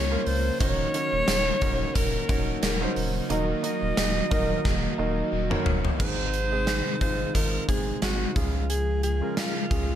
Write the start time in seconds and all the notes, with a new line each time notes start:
Already playing: C#2 A#2 C#3 F3 A#3 C#4 F4 A#4 C#5 D#5
0.11 A#3 C#4 F4 A#4 C#5
0.26 C#2 C5, open hi-hat
0.60 D#1 D#3 F#3 A#3 C#4 D#4 F#4 A#4 C#5, kick, closed hi-hat
0.94 C#4 D#4 F#4 A#4 C#5, closed hi-hat
1.13 D#1
1.27 D#1 D#3 A#3 D#4, snare, closed hi-hat, tambourine
1.61 D#1 C#4 D#4 F#4 A#4 C#5, kick, closed hi-hat
1.95 D#1 D#3 A#3 D#4 A#4, kick, closed hi-hat
2.29 D#1 C#4 D#4 F#4 A#4 C#5, kick, closed hi-hat
2.62 D#1 D#3 A#3 D#4 A#4, snare, closed hi-hat, tambourine
2.81 C#4 D#4 F#4 A#4 C5
2.96 D#1, open hi-hat
3.29 D#1 D#3 F#3 A#3 D#4 F#4 A#4 D#5, closed hi-hat
3.63 A#3 D#4 F#4 A#4 D#5, closed hi-hat
3.82 D#1
3.97 D#1, snare, closed hi-hat, tambourine
4.30 D#1 F#3 A#3 D#4 F#4 A#4 D#5, kick, closed hi-hat
4.65 D#1 D#3 A#3 D#4, kick, snare
4.98 D#1 A#3 D#4 F#4 A#4 D#5
5.32 D#1 D#3 A#3 D#4
5.50 A#3 D#4 F#4 A#4 C#5, mid tom
5.66 D#1, floor tom
5.85 floor tom
5.99 G#1 G#2 C3 D#3 G#3 C4 D#4 G#4 C5, kick, crash
6.34 closed hi-hat
6.52 G#3 C4 D#4 G#4
6.67 snare, closed hi-hat
7.01 G#1 G#3 C4 D#4 F4 C5, kick, closed hi-hat
7.34 G#1 G#3 C4 D#4 F4 A#4, kick, closed hi-hat
7.68 G#1 G#3 C4 D#4 G#4, kick, closed hi-hat
8.02 G#1 F#4, snare, closed hi-hat
8.35 C#2 C#3 F3 G#3 C#4 F4 G#4, kick, closed hi-hat
8.69 G#4, closed hi-hat
9.03 G#4, closed hi-hat
9.21 G#3 C#4 F4 A#4
9.37 F4, snare, closed hi-hat
9.70 C#2 G#3 C#4 F4 G#4, kick, closed hi-hat